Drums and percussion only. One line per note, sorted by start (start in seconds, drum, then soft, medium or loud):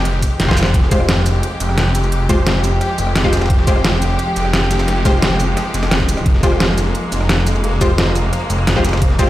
0.05 closed hi-hat medium
0.05 ride medium
0.05 shaker soft
0.22 kick medium
0.22 closed hi-hat loud
0.22 ride medium
0.22 shaker medium
0.40 snare medium
0.40 snare loud
0.40 closed hi-hat medium
0.40 ride medium
0.48 kick medium
0.48 snare medium
0.57 snare loud
0.57 open hi-hat medium
0.57 ride medium
0.57 shaker medium
0.63 snare loud
0.63 shaker soft
0.66 snare soft
0.74 kick loud
0.74 closed hi-hat medium
0.74 ride medium
0.83 snare medium
0.91 kick loud
0.91 closed hi-hat loud
0.91 ride medium
0.91 shaker medium
1.00 cross-stick soft
1.00 snare soft
1.09 snare loud
1.09 closed hi-hat medium
1.09 ride medium
1.17 snare soft
1.26 closed hi-hat loud
1.26 ride medium
1.26 shaker medium
1.35 snare soft
1.43 closed hi-hat medium
1.43 ride medium
1.43 shaker soft
1.60 closed hi-hat loud
1.60 ride medium
1.60 shaker medium
1.69 cross-stick soft
1.69 snare soft
1.78 snare loud
1.78 closed hi-hat medium
1.78 ride medium
1.95 closed hi-hat loud
1.95 ride medium
1.95 shaker medium
2.03 shaker soft
2.12 closed hi-hat medium
2.12 ride medium
2.29 kick loud
2.29 snare soft
2.29 closed hi-hat medium
2.29 ride medium
2.29 shaker medium
2.47 snare loud
2.47 closed hi-hat medium
2.47 ride medium
2.55 ride soft
2.64 open hi-hat medium
2.64 ride medium
2.64 shaker medium
2.81 cross-stick soft
2.81 closed hi-hat medium
2.81 ride medium
2.81 shaker soft
2.98 closed hi-hat medium
2.98 ride medium
2.98 shaker medium
3.07 cross-stick soft
3.16 snare loud
3.16 closed hi-hat medium
3.16 ride medium
3.24 kick medium
3.33 snare medium
3.33 closed hi-hat loud
3.33 ride medium
3.33 shaker medium
3.37 snare medium
3.37 ride medium
3.41 cross-stick soft
3.41 snare medium
3.41 ride medium
3.41 shaker soft
3.46 snare medium
3.46 ride medium
3.50 kick loud
3.50 closed hi-hat medium
3.50 ride medium
3.59 snare medium
3.67 kick loud
3.67 closed hi-hat medium
3.67 ride medium
3.67 shaker medium
3.76 cross-stick soft
3.76 snare soft
3.85 snare loud
3.85 closed hi-hat medium
3.85 ride medium
3.93 snare soft
4.02 closed hi-hat medium
4.02 ride medium
4.02 shaker medium
4.10 snare soft
4.19 closed hi-hat medium
4.19 ride medium
4.19 shaker soft
4.36 closed hi-hat medium
4.36 ride medium
4.36 shaker medium
4.45 cross-stick soft
4.45 snare soft
4.53 snare loud
4.53 closed hi-hat medium
4.53 ride medium
4.71 snare loud
4.71 closed hi-hat medium
4.71 ride medium
4.71 shaker medium
4.79 snare loud
4.79 ride medium
4.79 shaker soft
4.88 snare loud
4.88 closed hi-hat medium
4.88 ride medium
5.05 kick loud
5.05 snare soft
5.05 closed hi-hat medium
5.05 ride medium
5.05 shaker medium
5.22 snare loud
5.22 closed hi-hat medium
5.22 ride medium
5.31 ride soft
5.40 open hi-hat medium
5.40 ride medium
5.40 shaker medium
5.57 cross-stick soft
5.57 snare loud
5.57 closed hi-hat medium
5.57 ride medium
5.57 shaker soft
5.66 snare soft
5.74 closed hi-hat medium
5.74 ride medium
5.74 shaker medium
5.83 cross-stick soft
5.83 snare loud
5.83 ride medium
5.91 snare loud
5.91 closed hi-hat medium
6.00 kick medium
6.00 ride medium
6.09 closed hi-hat medium
6.09 ride medium
6.09 shaker medium
6.17 cross-stick soft
6.17 shaker soft
6.26 kick loud
6.26 closed hi-hat medium
6.26 ride medium
6.35 snare medium
6.43 kick loud
6.43 closed hi-hat medium
6.43 ride medium
6.43 shaker medium
6.52 cross-stick soft
6.52 snare soft
6.60 snare loud
6.60 closed hi-hat medium
6.60 ride medium
6.69 snare soft
6.78 closed hi-hat medium
6.78 ride medium
6.78 shaker medium
6.86 snare soft
6.95 closed hi-hat medium
6.95 ride medium
6.95 shaker soft
7.12 closed hi-hat medium
7.12 ride medium
7.12 shaker medium
7.21 cross-stick soft
7.21 snare soft
7.29 snare loud
7.29 closed hi-hat medium
7.29 ride medium
7.47 closed hi-hat medium
7.47 ride medium
7.47 shaker medium
7.55 shaker soft
7.64 closed hi-hat medium
7.64 ride medium
7.81 kick loud
7.81 snare soft
7.81 closed hi-hat medium
7.81 ride medium
7.81 shaker medium
7.98 snare loud
7.98 closed hi-hat medium
7.98 ride medium
8.07 ride soft
8.16 open hi-hat medium
8.16 ride medium
8.16 shaker medium
8.33 cross-stick soft
8.33 closed hi-hat medium
8.33 ride medium
8.33 shaker soft
8.50 closed hi-hat medium
8.50 ride medium
8.50 shaker medium
8.59 cross-stick soft
8.67 snare loud
8.67 closed hi-hat medium
8.67 ride medium
8.76 kick medium
8.85 snare medium
8.85 closed hi-hat loud
8.85 ride medium
8.85 shaker medium
8.89 snare medium
8.89 ride medium
8.93 cross-stick soft
8.93 snare medium
8.93 ride medium
8.93 shaker soft
8.97 snare medium
8.97 ride medium
9.02 kick loud
9.02 closed hi-hat medium
9.02 ride medium
9.10 snare medium
9.19 kick loud
9.19 closed hi-hat loud
9.19 ride medium
9.19 shaker medium